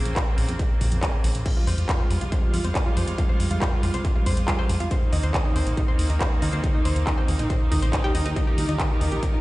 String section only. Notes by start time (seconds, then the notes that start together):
Already playing: C#3 A#3 C4
1.46 G3 G#3 F4
4.91 A#3 C4 D#4
8.36 D#3 F4 G4 A#4